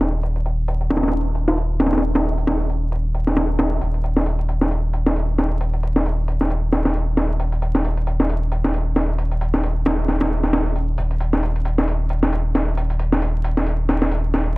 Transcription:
0.00 3.80 D#1 medium
0.00 snare soft
0.00 closed hi-hat medium
0.23 closed hi-hat medium
0.36 closed hi-hat soft
0.46 closed hi-hat medium
0.68 closed hi-hat medium
0.81 closed hi-hat soft
0.90 snare medium
0.90 closed hi-hat medium
0.97 snare medium
0.97 closed hi-hat medium
1.03 snare medium
1.03 closed hi-hat medium
1.08 snare medium
1.08 closed hi-hat medium
1.13 closed hi-hat medium
1.35 closed hi-hat medium
1.48 snare medium
1.58 closed hi-hat medium
1.80 snare medium
1.80 closed hi-hat medium
1.86 snare medium
1.86 closed hi-hat medium
1.93 snare medium
1.93 closed hi-hat medium
1.98 snare medium
1.98 closed hi-hat medium
2.02 closed hi-hat medium
2.15 snare loud
2.15 closed hi-hat medium
2.25 closed hi-hat soft
2.38 closed hi-hat medium
2.47 snare loud
2.47 closed hi-hat medium
2.60 closed hi-hat soft
2.69 closed hi-hat medium
2.92 closed hi-hat medium
3.14 closed hi-hat medium
3.27 snare medium
3.37 snare loud
3.37 closed hi-hat medium
3.59 snare loud
3.59 closed hi-hat medium
3.81 10.96 D#1 medium
3.81 closed hi-hat medium
3.94 closed hi-hat soft
4.04 closed hi-hat medium
4.16 snare soft
4.26 closed hi-hat medium
4.39 closed hi-hat soft
4.49 closed hi-hat medium
4.61 snare soft
4.71 closed hi-hat medium
4.93 closed hi-hat medium
5.06 snare medium
5.16 closed hi-hat medium
5.38 snare soft
5.38 closed hi-hat medium
5.61 closed hi-hat medium
5.74 closed hi-hat soft
5.83 closed hi-hat medium
5.96 snare soft
6.06 closed hi-hat medium
6.28 closed hi-hat medium
6.41 snare soft
6.50 closed hi-hat medium
6.72 snare soft
6.72 open hi-hat medium
6.85 snare medium
6.95 closed hi-hat medium
7.17 snare soft
7.17 closed hi-hat medium
7.40 closed hi-hat medium
7.52 closed hi-hat soft
7.62 closed hi-hat medium
7.75 snare soft
7.84 closed hi-hat medium
7.97 closed hi-hat soft
8.07 closed hi-hat medium
8.20 snare soft
8.29 closed hi-hat medium
8.52 closed hi-hat medium
8.64 snare medium
8.74 closed hi-hat medium
8.96 snare soft
8.96 closed hi-hat medium
9.19 closed hi-hat medium
9.31 closed hi-hat soft
9.41 closed hi-hat medium
9.54 snare soft
9.63 closed hi-hat medium
9.86 snare loud
9.86 closed hi-hat medium
10.08 snare soft
10.08 closed hi-hat medium
10.21 snare loud
10.21 closed hi-hat medium
10.43 snare soft
10.43 closed hi-hat medium
10.53 snare loud
10.53 closed hi-hat medium
10.76 closed hi-hat medium
10.98 14.58 D#1 medium
10.98 closed hi-hat medium
11.11 closed hi-hat soft
11.20 closed hi-hat medium
11.33 snare soft
11.43 closed hi-hat medium
11.56 closed hi-hat soft
11.65 closed hi-hat medium
11.78 snare soft
11.88 closed hi-hat medium
12.10 closed hi-hat medium
12.23 snare medium
12.33 closed hi-hat medium
12.55 snare soft
12.55 closed hi-hat medium
12.77 closed hi-hat medium
12.90 closed hi-hat soft
12.99 closed hi-hat medium
13.12 snare soft
13.22 closed hi-hat medium
13.44 closed hi-hat medium
13.57 snare soft
13.66 closed hi-hat medium
13.89 snare soft
13.89 open hi-hat medium
14.02 snare medium
14.11 closed hi-hat medium
14.34 snare medium
14.34 closed hi-hat medium

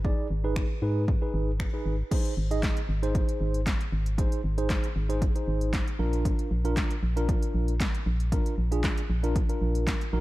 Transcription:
0.00 0.13 G#1 medium
0.05 0.26 D#4 medium
0.05 0.26 G#4 medium
0.05 0.27 D5 medium
0.05 kick loud
0.31 0.65 G#1 medium
0.44 0.65 D#4 medium
0.44 0.65 G#4 medium
0.44 0.66 B4 medium
0.56 finger snap loud
0.56 kick loud
0.82 1.16 G#2 medium
0.82 1.04 D#4 medium
0.82 1.04 G#4 medium
0.82 1.04 B4 medium
1.08 kick loud
1.22 1.50 D#4 medium
1.22 1.50 G#4 medium
1.22 1.50 B4 medium
1.34 1.68 G#1 loud
1.60 finger snap loud
1.60 kick loud
1.73 1.95 D#4 medium
1.73 1.95 G#4 medium
1.73 1.95 B4 medium
1.86 2.03 G#1 medium
2.11 2.33 D#4 medium
2.11 2.33 G#4 medium
2.11 2.33 C5 loud
2.11 kick loud
2.11 closed hi-hat medium
2.11 crash medium
2.25 closed hi-hat soft
2.37 2.72 G#1 loud
2.51 2.79 D#4 medium
2.51 2.79 G#4 medium
2.51 2.80 D#5 medium
2.51 closed hi-hat medium
2.63 kick loud
2.63 snare medium
2.63 clap loud
2.63 closed hi-hat medium
2.77 closed hi-hat soft
2.89 3.23 G#1 loud
3.03 3.59 D#4 medium
3.03 3.60 G#4 medium
3.03 3.60 C5 loud
3.03 closed hi-hat medium
3.15 kick loud
3.15 closed hi-hat medium
3.29 closed hi-hat medium
3.41 3.75 G#1 medium
3.54 closed hi-hat soft
3.67 kick loud
3.67 snare loud
3.67 clap loud
3.67 closed hi-hat medium
3.81 closed hi-hat soft
3.92 4.27 G#1 loud
4.06 closed hi-hat medium
4.18 4.40 D#4 medium
4.18 4.40 G#4 medium
4.18 4.40 C5 loud
4.18 kick loud
4.18 closed hi-hat medium
4.32 closed hi-hat soft
4.44 4.78 G#1 medium
4.58 4.86 D#4 medium
4.58 4.86 G#4 medium
4.58 4.87 C5 medium
4.58 closed hi-hat medium
4.70 kick loud
4.70 snare medium
4.70 clap loud
4.70 closed hi-hat medium
4.84 closed hi-hat soft
4.96 5.30 G#1 loud
5.09 5.23 D#4 medium
5.09 5.23 G#4 medium
5.09 5.23 C5 medium
5.09 closed hi-hat medium
5.22 kick loud
5.22 closed hi-hat medium
5.35 5.85 D#4 medium
5.35 5.85 G#4 medium
5.35 5.85 C5 medium
5.35 closed hi-hat medium
5.48 5.82 G#1 medium
5.61 closed hi-hat soft
5.73 kick loud
5.73 snare loud
5.73 clap loud
5.73 closed hi-hat medium
5.87 closed hi-hat soft
5.99 6.34 A#1 loud
5.99 6.51 D4 medium
5.99 6.51 F4 medium
5.99 6.51 A#4 medium
6.13 closed hi-hat soft
6.25 kick loud
6.25 closed hi-hat medium
6.39 closed hi-hat soft
6.51 6.85 A#1 loud
6.65 6.93 D4 medium
6.65 6.93 F4 medium
6.65 6.93 A#4 loud
6.65 closed hi-hat medium
6.77 kick loud
6.77 snare medium
6.77 clap loud
6.77 closed hi-hat medium
6.91 closed hi-hat medium
7.03 7.37 A#1 loud
7.16 7.73 D4 medium
7.16 7.73 F4 medium
7.16 7.74 A#4 medium
7.16 closed hi-hat medium
7.29 kick loud
7.29 closed hi-hat medium
7.42 closed hi-hat medium
7.55 7.89 A#1 loud
7.68 closed hi-hat medium
7.80 kick loud
7.80 snare loud
7.80 clap loud
7.80 closed hi-hat medium
7.95 closed hi-hat soft
8.06 8.41 A#1 loud
8.20 closed hi-hat medium
8.32 8.54 D4 medium
8.32 8.54 F4 medium
8.32 8.54 A#4 medium
8.32 kick loud
8.32 closed hi-hat medium
8.46 closed hi-hat medium
8.58 8.92 A#1 medium
8.72 9.00 D4 medium
8.72 9.00 F4 medium
8.72 9.00 G#4 medium
8.72 closed hi-hat medium
8.84 kick loud
8.84 snare medium
8.84 clap loud
8.84 closed hi-hat medium
8.98 closed hi-hat soft
9.10 9.44 A#1 loud
9.23 9.37 D4 medium
9.23 9.37 F4 medium
9.23 9.37 A#4 medium
9.23 closed hi-hat medium
9.36 kick loud
9.36 closed hi-hat medium
9.49 9.99 D4 medium
9.49 9.99 F4 medium
9.49 9.99 A#4 medium
9.49 closed hi-hat medium
9.62 9.96 A#1 medium
9.75 closed hi-hat medium
9.87 kick loud
9.87 snare loud
9.87 clap loud
9.87 closed hi-hat medium
10.01 closed hi-hat soft
10.13 10.21 A#1 loud
10.13 10.21 D#4 medium
10.13 10.21 F#4 medium
10.13 10.21 A#4 loud

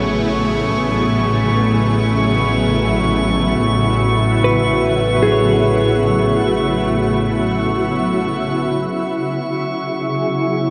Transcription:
0.00 8.78 A1 medium
0.00 8.78 C#3 medium
0.00 8.83 F#3 medium
0.00 8.79 A3 medium
0.00 8.82 B3 medium
0.00 10.70 E4 medium
0.00 3.09 G#4 medium
0.00 0.97 B4 medium
0.00 1.30 C#5 medium
0.00 1.00 E5 soft
0.00 8.81 C#6 medium
2.83 10.70 F#4 medium
4.44 5.26 B4 medium
5.23 8.64 G#4 medium
5.27 8.66 B4 soft
5.32 8.69 C#5 soft
8.79 10.70 C#3 medium
8.79 10.70 A3 medium
8.79 10.70 C#6 medium
8.99 10.70 F#3 medium
9.13 10.70 G#4 medium
9.72 10.70 B3 medium

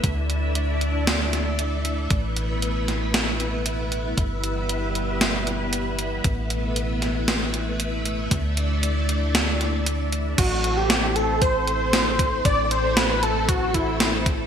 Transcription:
0.00 2.08 D2 medium
0.00 4.14 A3 medium
0.00 2.09 D5 medium
0.00 6.20 E5 medium
0.00 kick loud
0.00 closed hi-hat medium
0.04 2.09 D4 medium
0.04 8.28 E4 medium
0.30 closed hi-hat medium
0.55 closed hi-hat medium
0.81 closed hi-hat medium
1.07 snare loud
1.07 closed hi-hat medium
1.33 snare soft
1.33 closed hi-hat medium
1.59 closed hi-hat medium
1.85 closed hi-hat medium
2.10 4.15 A1 medium
2.10 4.16 B3 medium
2.10 6.21 B4 medium
2.10 kick loud
2.10 closed hi-hat medium
2.37 closed hi-hat medium
2.62 closed hi-hat medium
2.88 snare soft
2.88 closed hi-hat medium
3.14 snare loud
3.14 closed hi-hat medium
3.40 closed hi-hat medium
3.66 closed hi-hat medium
3.92 closed hi-hat medium
4.18 6.22 G1 medium
4.18 6.23 G3 medium
4.18 8.27 B3 medium
4.18 kick loud
4.18 closed hi-hat medium
4.44 closed hi-hat medium
4.69 closed hi-hat medium
4.95 closed hi-hat medium
5.21 snare loud
5.21 closed hi-hat medium
5.47 closed hi-hat medium
5.73 closed hi-hat medium
5.99 closed hi-hat medium
6.24 8.29 A1 medium
6.24 10.34 A3 medium
6.24 8.29 B4 medium
6.24 10.34 E5 medium
6.24 kick loud
6.24 closed hi-hat medium
6.50 closed hi-hat medium
6.76 closed hi-hat medium
7.02 snare soft
7.02 closed hi-hat medium
7.28 snare loud
7.28 closed hi-hat medium
7.54 closed hi-hat medium
7.80 closed hi-hat medium
8.05 closed hi-hat medium
8.31 10.36 D2 medium
8.31 10.36 D4 medium
8.31 10.36 E4 medium
8.31 10.36 D5 medium
8.31 kick loud
8.31 closed hi-hat medium
8.57 closed hi-hat medium
8.83 closed hi-hat medium
9.09 closed hi-hat medium
9.35 snare loud
9.35 closed hi-hat medium
9.61 snare soft
9.61 closed hi-hat medium
9.86 closed hi-hat medium
10.12 closed hi-hat medium
10.38 12.43 A1 medium
10.38 14.47 A3 medium
10.38 14.47 C4 medium
10.38 14.47 E4 medium
10.38 10.79 F#4 loud
10.38 10.74 F#4 medium
10.38 14.47 A4 medium
10.38 14.47 C5 medium
10.38 kick loud
10.38 closed hi-hat loud
10.38 crash loud
10.64 closed hi-hat medium
10.77 11.17 G4 medium
10.77 11.13 G4 medium
10.90 snare loud
10.90 closed hi-hat loud
11.16 11.41 A4 loud
11.16 11.40 A4 loud
11.16 closed hi-hat medium
11.42 12.41 C5 loud
11.42 kick loud
11.42 closed hi-hat loud
11.67 closed hi-hat medium
11.93 snare loud
11.93 closed hi-hat loud
12.19 kick loud
12.19 closed hi-hat medium
12.45 14.47 A1 medium
12.45 12.63 D5 loud
12.45 12.65 D5 loud
12.45 kick loud
12.45 closed hi-hat loud
12.65 12.73 D5 medium
12.65 12.71 D5 medium
12.71 12.95 C5 loud
12.71 12.99 C5 loud
12.71 closed hi-hat medium
12.97 13.21 B4 loud
12.97 13.25 B4 loud
12.97 snare loud
12.97 closed hi-hat loud
13.23 13.47 A4 loud
13.23 13.48 A4 loud
13.23 closed hi-hat medium
13.49 13.76 F#4 medium
13.49 13.73 F#4 loud
13.49 kick loud
13.49 closed hi-hat loud
13.74 14.26 E4 medium
13.74 14.23 E4 medium
13.74 kick medium
13.74 closed hi-hat medium
14.00 snare loud
14.00 closed hi-hat loud
14.26 kick loud
14.26 closed hi-hat medium

